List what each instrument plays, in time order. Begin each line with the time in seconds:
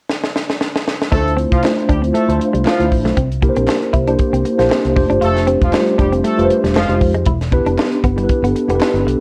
0.10 snare
0.24 snare
0.36 snare
0.50 snare
0.61 snare
0.76 snare
0.88 snare
1.02 snare
1.11 fingered electric bass D2, tine electric piano A3 D4 E4 F4 C5, horn section A3 A4, clean electric guitar D4, kick, closed hi-hat
1.26 muted clean electric guitar stroke, closed hi-hat
1.37 clean electric guitar C4, closed hi-hat
1.51 fingered electric bass C2, horn section F3 F4, kick, closed hi-hat
1.63 tine electric piano A3 D4 E4 F4 C5, muted clean electric guitar stroke, snare, clap
1.79 closed hi-hat
1.89 fingered electric bass D2, horn section G3 G4, clean electric guitar D4, kick, closed hi-hat
2.02 clean electric guitar C4, closed hi-hat
2.14 horn section A3 A4, clean electric guitar A3, closed hi-hat
2.27 fingered electric bass D2, tine electric piano A3 D4 E4 F4 C5, closed hi-hat
2.40 muted clean electric guitar stroke, closed hi-hat
2.53 fingered electric bass C2, clean electric guitar G3, closed hi-hat
2.65 horn section F3 F4, clean electric guitar A3, snare, clap
2.79 fingered electric bass D2, tine electric piano A3 D4 E4 F4 C5, muted clean electric guitar stroke, closed hi-hat
2.92 fingered electric bass A1, kick, open hi-hat
3.05 fingered electric bass B1, clean electric guitar A3, snare, closed hi-hat
3.17 fingered electric bass C2, clean electric guitar C4, kick, closed hi-hat
3.32 closed hi-hat
3.42 tine electric piano A#3 D4 E4 G4 A#4, muted clean electric guitar stroke, kick, closed hi-hat
3.49 tine electric piano C5
3.56 fingered electric bass A#1, clean electric guitar C4, closed hi-hat
3.68 muted clean electric guitar stroke, snare, clap
3.82 closed hi-hat
3.93 fingered electric bass C2, clean electric guitar E4, kick, closed hi-hat
4.07 tine electric piano A#3 D4 E4 G4 C5, clean electric guitar D4, closed hi-hat
4.19 kick, closed hi-hat
4.33 fingered electric bass C2, clean electric guitar C4, closed hi-hat
4.45 muted clean electric guitar stroke, closed hi-hat
4.58 fingered electric bass A#1, tine electric piano A#3 D4 E4 G4 C5, clean electric guitar A#3, snare, closed hi-hat
4.70 clean electric guitar C4, snare, clap
4.85 fingered electric bass C2, closed hi-hat
4.95 fingered electric bass F1, tine electric piano A3 D4 F4 G4 C5, muted clean electric guitar stroke, kick, open hi-hat
5.10 fingered electric bass G1, clean electric guitar D4, closed hi-hat
5.21 fingered electric bass F1, horn section A3 A4, clean electric guitar F4, closed hi-hat
5.36 muted clean electric guitar stroke, snare, closed hi-hat
5.47 clean electric guitar C4, closed hi-hat
5.62 fingered electric bass E1, horn section F3 F4, kick, closed hi-hat
5.73 tine electric piano G3 D4 F4 G4 C5, muted clean electric guitar stroke, snare, clap
5.79 tine electric piano A3
5.88 closed hi-hat
5.98 fingered electric bass F1, horn section G3 G4, clean electric guitar D4, kick, closed hi-hat
6.12 clean electric guitar C4, closed hi-hat
6.24 horn section A3 A4, clean electric guitar A3, closed hi-hat
6.37 fingered electric bass F1, tine electric piano A3 D4 F4 G4 B4, closed hi-hat
6.45 tine electric piano C5
6.50 muted clean electric guitar stroke, closed hi-hat
6.64 fingered electric bass E1, clean electric guitar G3, snare, closed hi-hat
6.75 fingered electric bass F1, horn section F3 F4, clean electric guitar G#3, snare, clap
6.88 fingered electric bass F1, tine electric piano G#3 D#4 F4 G4 C5, muted clean electric guitar stroke, closed hi-hat
7.01 fingered electric bass F2, kick, open hi-hat
7.14 clean electric guitar G#3, closed hi-hat
7.26 fingered electric bass E1, clean electric guitar E4, kick, closed hi-hat
7.41 snare, closed hi-hat
7.51 tine electric piano B3 D4 E4 G4 B4, muted clean electric guitar stroke, kick, closed hi-hat
7.66 fingered electric bass F1, clean electric guitar D4, closed hi-hat
7.78 muted clean electric guitar stroke, snare, clap
7.92 closed hi-hat
8.04 fingered electric bass G1, clean electric guitar B3, kick, closed hi-hat
8.16 clean electric guitar G3, tine electric piano B3 D4 E4 G4 A4, closed hi-hat
8.23 tine electric piano B4
8.29 kick, closed hi-hat
8.42 fingered electric bass G1, clean electric guitar B3, closed hi-hat
8.56 muted clean electric guitar stroke, closed hi-hat
8.67 fingered electric bass F1, tine electric piano B3 D4 E4 G4 A4, clean electric guitar B3, closed hi-hat
8.75 tine electric piano B4
8.81 clean electric guitar D4, snare, clap
8.94 fingered electric bass G1, closed hi-hat
9.06 fingered electric bass B1, muted clean electric guitar stroke, closed hi-hat